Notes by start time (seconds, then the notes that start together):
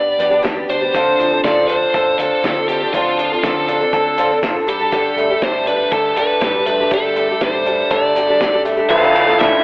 Already playing: G1 G3 B3 D4 G4 D5
0.19 F2 G3 B3 D4 G4, closed hi-hat
0.30 G3 B3 D4 G4
0.42 E2 G2 D3 G3 B3 D4 G4, kick, snare, closed hi-hat
0.56 G3 B3 D4 G4
0.68 D2 G3 B3 D4 G4 C5, closed hi-hat
0.81 G3 B3 D4 G4
0.93 D2 D3 F3 C4 D4 A4, kick, closed hi-hat
1.18 D2 F3, closed hi-hat
1.30 C4 D4 A4
1.43 D2 D3 F3 C4 D4 A4 D5, kick, snare, closed hi-hat
1.68 F3 C4 D4 A4 C5, closed hi-hat
1.94 A1 A4, kick, closed hi-hat
2.18 D2 F3 C4 D4 A4, closed hi-hat
2.43 D3 F3 C4 D4 A4, kick, snare, closed hi-hat
2.56 C4 D4 A4
2.68 F3 C4 D4 G4 A4, closed hi-hat
2.81 C4 D4 A4
2.93 D2 D3 F3 C4 D4 F4 A4, kick, closed hi-hat
3.18 F3, closed hi-hat
3.32 C4 D4 A4
3.43 D3 F3 C4 D4 A4, kick, snare, closed hi-hat
3.67 F3 C4 D4 A4, closed hi-hat
3.81 C4 D4 A4
3.93 D2 A4, kick, closed hi-hat
4.18 F3 C4 D4 A4, closed hi-hat
4.30 C4 D4 A4
4.43 G#1 D3 F3 C4 D4 A4, kick, snare, closed hi-hat
4.56 C4 D4 A4
4.66 G1 G3 D4 G4 A4, closed hi-hat
4.80 G3 D4 G4 A4
4.91 G2 D3 G3 D4 G4 A4, kick, closed hi-hat
5.16 G1 A3, closed hi-hat
5.29 G3 D4 G4 A4
5.42 G1 G2 D3 G3 D4 G4 A4 C5, kick, snare, closed hi-hat
5.66 G3 D4 G4 A4 B4, closed hi-hat
5.92 D2 A4, kick, closed hi-hat
6.16 G1 G3 D4 G4 A4 B4, closed hi-hat
6.41 G2 D3 G3 D4 G4 A4, kick, snare, closed hi-hat
6.54 G3 D4 G4 A4
6.66 G3 A3 D4 G4 A4 B4, closed hi-hat
6.79 G3 D4 G4 A4
6.91 G1 G2 D3 G3 D4 G4 A4, kick, closed hi-hat
7.16 A3, closed hi-hat
7.28 G3 D4 G4 A4
7.41 G2 D3 G3 D4 G4 A4 C5, kick, snare, closed hi-hat
7.66 G3 D4 G4 A4, closed hi-hat
7.91 G1 A4 D5, kick, closed hi-hat
8.16 G3 D4 G4 A4, closed hi-hat
8.28 G3 D4 G4 A4
8.40 G1 G2 D3 G3 D4 G4 A4, kick, snare, closed hi-hat
8.53 G3 D4 G4 A4
8.64 G3 A3 D4 G4 A4, closed hi-hat
8.77 G3 D4 G4 A4
8.89 D2 D3 F3 A3 D4 E4 A4 F5, kick, crash, shaker
9.01 D4 E4 A4
9.14 A3 D4 E4, ride, shaker
9.26 D4 E4 A4, snare, shaker
9.38 D3 F3 A3 D4 E4 A4 E5, snare, ride, shaker